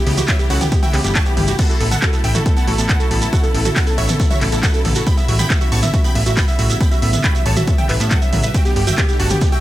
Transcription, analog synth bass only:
0.07 C#2
0.50 C#2
0.94 C#2
1.04 G1
1.37 G1
1.81 A1
2.24 A1
2.67 A1
2.78 A1
3.11 A1
3.54 A1
3.98 A1
4.41 A1
4.52 A1
4.85 A1
5.28 A1
5.72 A1
6.15 A1
6.26 A1
6.59 A1
7.02 A1
7.46 A1
7.89 A1
8.00 A2
8.33 A1
8.76 G1
9.20 G1

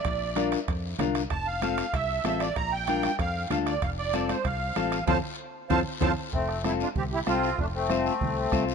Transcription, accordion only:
Already playing: D5
1.31 A5
1.47 F5
1.94 E5
2.26 E5
2.41 D5
2.56 A#5
2.72 G5
3.20 F5
3.51 F5
3.67 D5
3.83 F5
3.98 D5
4.30 C5
4.45 F5
5.07 C5 F5 A5
5.70 C5 F5 A5
6.02 C5 F5 A5
6.33 A3 C4
6.66 C4 E4
6.82 D4 F4
6.97 C4 G4
7.13 E4 G4
7.27 C4 F4
7.59 A3 D4
7.74 A3 C4

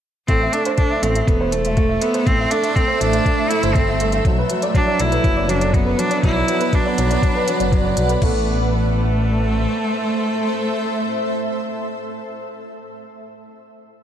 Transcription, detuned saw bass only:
0.28 A1
1.02 A1
1.28 E1
2.27 A1
3.01 A1
3.63 G1
4.25 B1
5.00 B1
5.24 F#1
6.23 B1
6.98 B1
7.60 F#1
7.97 B1
8.22 A1

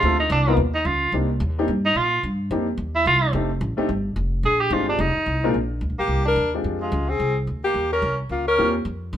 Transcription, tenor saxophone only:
Already playing: F4
0.20 D#4
0.32 D4
0.74 D#4
0.86 F4
1.85 D#4
1.96 F4
2.95 E4
3.07 F4
4.45 G#4
4.60 G4
4.73 F4
4.89 D4
5.00 D#4
5.99 A#3
6.25 D4
6.81 G#3
7.09 C4
7.64 A#3
7.92 C#4
8.31 A#3
8.48 C#4

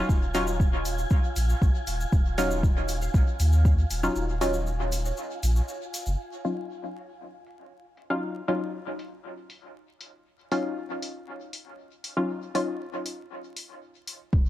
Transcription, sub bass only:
0.09 D#1
1.36 A#1
1.62 A#1
1.87 D#1
2.12 D#1
3.14 A#1
3.40 D#2
3.90 D#1
4.16 D#1
5.43 A#1
6.07 F#1
14.33 D#1

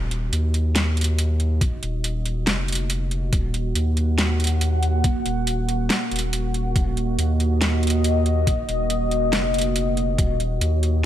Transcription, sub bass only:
Already playing: D#1
0.33 D#2
1.83 D#1
2.47 F1
3.33 D#1
3.76 D#2
5.26 D#1
6.11 D#1
6.76 D#1
7.19 D#2
8.69 D#1
9.33 F1
10.18 D#1
10.61 D#2

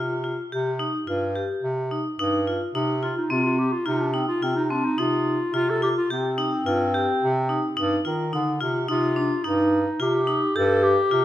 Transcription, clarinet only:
3.03 F4
3.17 D#4
3.32 F4
3.45 F4
3.59 G4
3.73 F4
3.86 D#4
4.01 D4
4.14 C4
4.28 F4
4.43 C4
4.56 D#4
4.71 D4
4.85 D#4
5.00 F4
5.56 F4
5.70 A4
5.83 G4
5.98 F4
6.12 C4
8.90 F4
9.45 D#4
10.02 G4
10.56 A4
10.83 G4

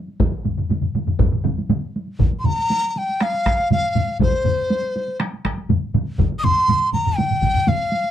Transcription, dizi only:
2.39 C6
2.45 A#5
2.91 A#5
2.98 G5
3.23 F5
3.72 F5
4.23 C5
6.39 D#6
6.44 C6
6.93 A#5
7.17 G5
7.68 F5

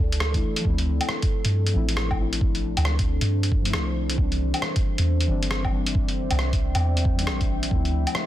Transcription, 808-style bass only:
0.00 D2
0.65 D2
1.45 G2
1.75 A1
2.78 D2
3.22 G2
3.74 C2
4.18 C2
4.99 E2
5.29 G1
6.32 C2
6.75 E2
7.28 A#1
7.71 D2

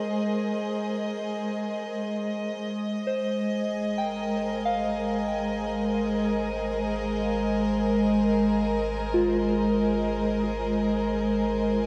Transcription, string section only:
Already playing: G#3 G#4 A#4 C5 D#5
2.64 G#3
3.29 G#4
3.99 A#4
4.37 C5

